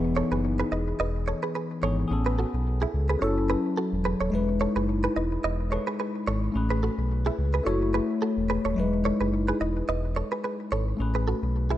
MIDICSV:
0, 0, Header, 1, 4, 480
1, 0, Start_track
1, 0, Key_signature, 4, "major"
1, 0, Tempo, 555556
1, 1817, Time_signature, 4, 2, 24, 8
1, 10174, End_track
2, 0, Start_track
2, 0, Title_t, "Clean electric guitar"
2, 0, Program_c, 0, 27
2, 143, Note_on_c, 0, 73, 77
2, 150, Note_on_c, 0, 69, 58
2, 243, Note_off_c, 0, 73, 0
2, 248, Note_off_c, 0, 69, 0
2, 274, Note_on_c, 0, 71, 72
2, 282, Note_on_c, 0, 68, 60
2, 356, Note_off_c, 0, 71, 0
2, 361, Note_off_c, 0, 68, 0
2, 515, Note_on_c, 0, 71, 77
2, 521, Note_on_c, 0, 68, 62
2, 596, Note_off_c, 0, 71, 0
2, 600, Note_off_c, 0, 68, 0
2, 622, Note_on_c, 0, 75, 82
2, 630, Note_on_c, 0, 71, 63
2, 723, Note_off_c, 0, 75, 0
2, 727, Note_off_c, 0, 71, 0
2, 863, Note_on_c, 0, 75, 83
2, 870, Note_on_c, 0, 71, 66
2, 963, Note_off_c, 0, 75, 0
2, 967, Note_off_c, 0, 71, 0
2, 1103, Note_on_c, 0, 73, 68
2, 1110, Note_on_c, 0, 69, 55
2, 1203, Note_off_c, 0, 73, 0
2, 1208, Note_off_c, 0, 69, 0
2, 1234, Note_on_c, 0, 71, 82
2, 1241, Note_on_c, 0, 68, 65
2, 1316, Note_off_c, 0, 71, 0
2, 1320, Note_off_c, 0, 68, 0
2, 1342, Note_on_c, 0, 71, 79
2, 1349, Note_on_c, 0, 68, 66
2, 1442, Note_off_c, 0, 71, 0
2, 1447, Note_off_c, 0, 68, 0
2, 1582, Note_on_c, 0, 73, 84
2, 1589, Note_on_c, 0, 69, 65
2, 1683, Note_off_c, 0, 73, 0
2, 1687, Note_off_c, 0, 69, 0
2, 1954, Note_on_c, 0, 71, 67
2, 1961, Note_on_c, 0, 68, 49
2, 2036, Note_off_c, 0, 71, 0
2, 2040, Note_off_c, 0, 68, 0
2, 2062, Note_on_c, 0, 69, 84
2, 2069, Note_on_c, 0, 66, 64
2, 2162, Note_off_c, 0, 69, 0
2, 2167, Note_off_c, 0, 66, 0
2, 2434, Note_on_c, 0, 68, 76
2, 2441, Note_on_c, 0, 64, 63
2, 2516, Note_off_c, 0, 68, 0
2, 2521, Note_off_c, 0, 64, 0
2, 2674, Note_on_c, 0, 71, 71
2, 2680, Note_on_c, 0, 68, 54
2, 2756, Note_off_c, 0, 71, 0
2, 2760, Note_off_c, 0, 68, 0
2, 2782, Note_on_c, 0, 73, 96
2, 2789, Note_on_c, 0, 69, 73
2, 2883, Note_off_c, 0, 73, 0
2, 2887, Note_off_c, 0, 69, 0
2, 3021, Note_on_c, 0, 71, 80
2, 3028, Note_on_c, 0, 68, 62
2, 3122, Note_off_c, 0, 71, 0
2, 3126, Note_off_c, 0, 68, 0
2, 3261, Note_on_c, 0, 69, 86
2, 3268, Note_on_c, 0, 66, 68
2, 3362, Note_off_c, 0, 69, 0
2, 3366, Note_off_c, 0, 66, 0
2, 3501, Note_on_c, 0, 71, 78
2, 3509, Note_on_c, 0, 68, 64
2, 3602, Note_off_c, 0, 71, 0
2, 3607, Note_off_c, 0, 68, 0
2, 3633, Note_on_c, 0, 73, 85
2, 3640, Note_on_c, 0, 69, 63
2, 3716, Note_off_c, 0, 73, 0
2, 3720, Note_off_c, 0, 69, 0
2, 3981, Note_on_c, 0, 73, 75
2, 3988, Note_on_c, 0, 69, 60
2, 4082, Note_off_c, 0, 73, 0
2, 4087, Note_off_c, 0, 69, 0
2, 4113, Note_on_c, 0, 71, 75
2, 4120, Note_on_c, 0, 68, 61
2, 4195, Note_off_c, 0, 71, 0
2, 4200, Note_off_c, 0, 68, 0
2, 4354, Note_on_c, 0, 71, 83
2, 4361, Note_on_c, 0, 68, 63
2, 4436, Note_off_c, 0, 71, 0
2, 4440, Note_off_c, 0, 68, 0
2, 4462, Note_on_c, 0, 75, 82
2, 4469, Note_on_c, 0, 71, 63
2, 4563, Note_off_c, 0, 75, 0
2, 4567, Note_off_c, 0, 71, 0
2, 4702, Note_on_c, 0, 75, 82
2, 4709, Note_on_c, 0, 71, 63
2, 4803, Note_off_c, 0, 75, 0
2, 4807, Note_off_c, 0, 71, 0
2, 4941, Note_on_c, 0, 73, 70
2, 4948, Note_on_c, 0, 69, 57
2, 5042, Note_off_c, 0, 73, 0
2, 5046, Note_off_c, 0, 69, 0
2, 5073, Note_on_c, 0, 71, 80
2, 5080, Note_on_c, 0, 68, 62
2, 5155, Note_off_c, 0, 71, 0
2, 5160, Note_off_c, 0, 68, 0
2, 5181, Note_on_c, 0, 71, 86
2, 5188, Note_on_c, 0, 68, 64
2, 5282, Note_off_c, 0, 71, 0
2, 5286, Note_off_c, 0, 68, 0
2, 5422, Note_on_c, 0, 73, 82
2, 5428, Note_on_c, 0, 69, 64
2, 5522, Note_off_c, 0, 73, 0
2, 5527, Note_off_c, 0, 69, 0
2, 5793, Note_on_c, 0, 71, 69
2, 5800, Note_on_c, 0, 68, 51
2, 5875, Note_off_c, 0, 71, 0
2, 5880, Note_off_c, 0, 68, 0
2, 5901, Note_on_c, 0, 69, 84
2, 5909, Note_on_c, 0, 66, 66
2, 6002, Note_off_c, 0, 69, 0
2, 6007, Note_off_c, 0, 66, 0
2, 6274, Note_on_c, 0, 68, 77
2, 6280, Note_on_c, 0, 64, 60
2, 6356, Note_off_c, 0, 68, 0
2, 6360, Note_off_c, 0, 64, 0
2, 6514, Note_on_c, 0, 71, 68
2, 6521, Note_on_c, 0, 68, 55
2, 6596, Note_off_c, 0, 71, 0
2, 6600, Note_off_c, 0, 68, 0
2, 6623, Note_on_c, 0, 73, 89
2, 6629, Note_on_c, 0, 69, 69
2, 6723, Note_off_c, 0, 73, 0
2, 6727, Note_off_c, 0, 69, 0
2, 6862, Note_on_c, 0, 71, 78
2, 6870, Note_on_c, 0, 68, 60
2, 6963, Note_off_c, 0, 71, 0
2, 6967, Note_off_c, 0, 68, 0
2, 7102, Note_on_c, 0, 69, 81
2, 7110, Note_on_c, 0, 66, 65
2, 7203, Note_off_c, 0, 69, 0
2, 7207, Note_off_c, 0, 66, 0
2, 7343, Note_on_c, 0, 71, 83
2, 7350, Note_on_c, 0, 68, 60
2, 7443, Note_off_c, 0, 71, 0
2, 7447, Note_off_c, 0, 68, 0
2, 7474, Note_on_c, 0, 73, 87
2, 7481, Note_on_c, 0, 69, 66
2, 7556, Note_off_c, 0, 73, 0
2, 7560, Note_off_c, 0, 69, 0
2, 7822, Note_on_c, 0, 73, 77
2, 7829, Note_on_c, 0, 69, 58
2, 7922, Note_off_c, 0, 73, 0
2, 7927, Note_off_c, 0, 69, 0
2, 7954, Note_on_c, 0, 71, 78
2, 7961, Note_on_c, 0, 68, 59
2, 8036, Note_off_c, 0, 71, 0
2, 8040, Note_off_c, 0, 68, 0
2, 8195, Note_on_c, 0, 71, 81
2, 8201, Note_on_c, 0, 68, 62
2, 8276, Note_off_c, 0, 71, 0
2, 8280, Note_off_c, 0, 68, 0
2, 8302, Note_on_c, 0, 75, 81
2, 8309, Note_on_c, 0, 71, 62
2, 8403, Note_off_c, 0, 75, 0
2, 8407, Note_off_c, 0, 71, 0
2, 8542, Note_on_c, 0, 75, 84
2, 8549, Note_on_c, 0, 71, 65
2, 8643, Note_off_c, 0, 75, 0
2, 8647, Note_off_c, 0, 71, 0
2, 8781, Note_on_c, 0, 73, 67
2, 8788, Note_on_c, 0, 69, 53
2, 8882, Note_off_c, 0, 73, 0
2, 8887, Note_off_c, 0, 69, 0
2, 8914, Note_on_c, 0, 71, 80
2, 8921, Note_on_c, 0, 68, 62
2, 8996, Note_off_c, 0, 71, 0
2, 9000, Note_off_c, 0, 68, 0
2, 9022, Note_on_c, 0, 71, 83
2, 9029, Note_on_c, 0, 68, 65
2, 9123, Note_off_c, 0, 71, 0
2, 9127, Note_off_c, 0, 68, 0
2, 9262, Note_on_c, 0, 73, 80
2, 9269, Note_on_c, 0, 69, 65
2, 9363, Note_off_c, 0, 73, 0
2, 9367, Note_off_c, 0, 69, 0
2, 9634, Note_on_c, 0, 71, 65
2, 9641, Note_on_c, 0, 68, 52
2, 9716, Note_off_c, 0, 71, 0
2, 9720, Note_off_c, 0, 68, 0
2, 9742, Note_on_c, 0, 69, 85
2, 9749, Note_on_c, 0, 66, 65
2, 9843, Note_off_c, 0, 69, 0
2, 9847, Note_off_c, 0, 66, 0
2, 10113, Note_on_c, 0, 68, 77
2, 10120, Note_on_c, 0, 64, 62
2, 10174, Note_off_c, 0, 64, 0
2, 10174, Note_off_c, 0, 68, 0
2, 10174, End_track
3, 0, Start_track
3, 0, Title_t, "Tine electric piano"
3, 0, Program_c, 1, 4
3, 0, Note_on_c, 1, 52, 77
3, 0, Note_on_c, 1, 59, 70
3, 0, Note_on_c, 1, 63, 72
3, 0, Note_on_c, 1, 68, 85
3, 67, Control_c, 1, 64, 127
3, 1533, Note_off_c, 1, 52, 0
3, 1540, Note_off_c, 1, 59, 0
3, 1548, Note_off_c, 1, 63, 0
3, 1555, Note_off_c, 1, 68, 0
3, 1567, Note_on_c, 1, 52, 59
3, 1574, Note_on_c, 1, 59, 57
3, 1581, Note_on_c, 1, 63, 54
3, 1588, Note_on_c, 1, 68, 66
3, 1785, Note_off_c, 1, 68, 0
3, 1795, Note_on_c, 1, 68, 74
3, 1799, Note_off_c, 1, 59, 0
3, 1809, Note_on_c, 1, 59, 70
3, 1812, Note_off_c, 1, 52, 0
3, 1819, Note_off_c, 1, 63, 0
3, 1824, Note_on_c, 1, 61, 73
3, 1828, Control_c, 1, 64, 0
3, 1838, Note_on_c, 1, 69, 86
3, 1971, Control_c, 1, 64, 127
3, 2747, Note_off_c, 1, 68, 0
3, 2754, Note_off_c, 1, 59, 0
3, 2755, Note_on_c, 1, 54, 82
3, 2759, Note_off_c, 1, 61, 0
3, 2769, Note_off_c, 1, 69, 0
3, 2769, Note_on_c, 1, 61, 74
3, 2784, Note_on_c, 1, 64, 71
3, 2789, Control_c, 1, 64, 0
3, 2798, Note_on_c, 1, 69, 89
3, 2953, Control_c, 1, 64, 127
3, 3707, Note_off_c, 1, 54, 0
3, 3714, Note_off_c, 1, 61, 0
3, 3716, Note_on_c, 1, 56, 75
3, 3722, Note_off_c, 1, 64, 0
3, 3729, Note_off_c, 1, 69, 0
3, 3730, Note_on_c, 1, 63, 73
3, 3744, Note_on_c, 1, 64, 68
3, 3747, Control_c, 1, 64, 0
3, 3758, Note_on_c, 1, 71, 84
3, 3921, Control_c, 1, 64, 127
3, 4902, Note_off_c, 1, 56, 0
3, 4909, Note_off_c, 1, 63, 0
3, 4917, Note_off_c, 1, 64, 0
3, 4924, Note_off_c, 1, 71, 0
3, 4926, Note_on_c, 1, 56, 60
3, 4934, Note_on_c, 1, 63, 52
3, 4941, Note_on_c, 1, 64, 53
3, 4948, Note_on_c, 1, 71, 65
3, 5634, Note_on_c, 1, 57, 78
3, 5649, Note_on_c, 1, 61, 69
3, 5652, Note_off_c, 1, 56, 0
3, 5656, Note_off_c, 1, 63, 0
3, 5659, Note_off_c, 1, 64, 0
3, 5663, Note_off_c, 1, 71, 0
3, 5663, Note_on_c, 1, 68, 68
3, 5667, Control_c, 1, 64, 0
3, 5678, Note_on_c, 1, 71, 86
3, 5839, Control_c, 1, 64, 127
3, 6584, Note_off_c, 1, 57, 0
3, 6594, Note_off_c, 1, 61, 0
3, 6595, Note_on_c, 1, 57, 79
3, 6601, Note_off_c, 1, 68, 0
3, 6608, Note_off_c, 1, 71, 0
3, 6609, Note_on_c, 1, 64, 75
3, 6623, Note_on_c, 1, 66, 71
3, 6630, Control_c, 1, 64, 0
3, 6638, Note_on_c, 1, 73, 85
3, 6798, Control_c, 1, 64, 127
3, 7547, Note_off_c, 1, 57, 0
3, 7554, Note_off_c, 1, 64, 0
3, 7557, Note_on_c, 1, 54, 61
3, 7561, Note_off_c, 1, 66, 0
3, 7569, Note_off_c, 1, 73, 0
3, 7571, Note_on_c, 1, 63, 69
3, 7585, Note_on_c, 1, 64, 69
3, 7589, Control_c, 1, 64, 0
3, 7600, Note_on_c, 1, 71, 87
3, 7613, Note_on_c, 1, 56, 79
3, 7629, Note_off_c, 1, 54, 0
3, 7722, Control_c, 1, 64, 127
3, 9460, Note_off_c, 1, 63, 0
3, 9466, Note_off_c, 1, 64, 0
3, 9474, Note_off_c, 1, 71, 0
3, 9477, Note_on_c, 1, 57, 78
3, 9480, Note_off_c, 1, 56, 0
3, 9491, Note_on_c, 1, 61, 69
3, 9505, Note_on_c, 1, 68, 67
3, 9507, Control_c, 1, 64, 0
3, 9519, Note_on_c, 1, 71, 85
3, 9637, Control_c, 1, 64, 127
3, 10174, Note_off_c, 1, 57, 0
3, 10174, Note_off_c, 1, 61, 0
3, 10174, Note_off_c, 1, 68, 0
3, 10174, Note_off_c, 1, 71, 0
3, 10174, End_track
4, 0, Start_track
4, 0, Title_t, "Sub bass"
4, 0, Program_c, 2, 38
4, 0, Note_on_c, 2, 28, 103
4, 197, Note_off_c, 2, 28, 0
4, 268, Note_on_c, 2, 30, 96
4, 550, Note_off_c, 2, 30, 0
4, 617, Note_on_c, 2, 28, 89
4, 811, Note_off_c, 2, 28, 0
4, 857, Note_on_c, 2, 28, 104
4, 1158, Note_off_c, 2, 28, 0
4, 1576, Note_on_c, 2, 32, 93
4, 1770, Note_off_c, 2, 32, 0
4, 1817, Note_on_c, 2, 33, 115
4, 2117, Note_off_c, 2, 33, 0
4, 2189, Note_on_c, 2, 35, 80
4, 2471, Note_off_c, 2, 35, 0
4, 2537, Note_on_c, 2, 37, 96
4, 2731, Note_off_c, 2, 37, 0
4, 2777, Note_on_c, 2, 30, 105
4, 3077, Note_off_c, 2, 30, 0
4, 3388, Note_on_c, 2, 28, 99
4, 3583, Note_off_c, 2, 28, 0
4, 3629, Note_on_c, 2, 27, 90
4, 3716, Note_off_c, 2, 27, 0
4, 3737, Note_on_c, 2, 28, 106
4, 4038, Note_off_c, 2, 28, 0
4, 4108, Note_on_c, 2, 30, 100
4, 4390, Note_off_c, 2, 30, 0
4, 4458, Note_on_c, 2, 28, 90
4, 4652, Note_off_c, 2, 28, 0
4, 4697, Note_on_c, 2, 28, 102
4, 4998, Note_off_c, 2, 28, 0
4, 5418, Note_on_c, 2, 32, 90
4, 5611, Note_off_c, 2, 32, 0
4, 5658, Note_on_c, 2, 33, 112
4, 5958, Note_off_c, 2, 33, 0
4, 6029, Note_on_c, 2, 35, 78
4, 6310, Note_off_c, 2, 35, 0
4, 6377, Note_on_c, 2, 37, 95
4, 6571, Note_off_c, 2, 37, 0
4, 6618, Note_on_c, 2, 30, 98
4, 6918, Note_off_c, 2, 30, 0
4, 7230, Note_on_c, 2, 28, 93
4, 7423, Note_off_c, 2, 28, 0
4, 7470, Note_on_c, 2, 27, 88
4, 7557, Note_off_c, 2, 27, 0
4, 7578, Note_on_c, 2, 28, 108
4, 7879, Note_off_c, 2, 28, 0
4, 7949, Note_on_c, 2, 30, 96
4, 8231, Note_off_c, 2, 30, 0
4, 8298, Note_on_c, 2, 28, 92
4, 8492, Note_off_c, 2, 28, 0
4, 8538, Note_on_c, 2, 28, 105
4, 8839, Note_off_c, 2, 28, 0
4, 9258, Note_on_c, 2, 32, 91
4, 9452, Note_off_c, 2, 32, 0
4, 9498, Note_on_c, 2, 33, 110
4, 9798, Note_off_c, 2, 33, 0
4, 9870, Note_on_c, 2, 35, 81
4, 10151, Note_off_c, 2, 35, 0
4, 10174, End_track
0, 0, End_of_file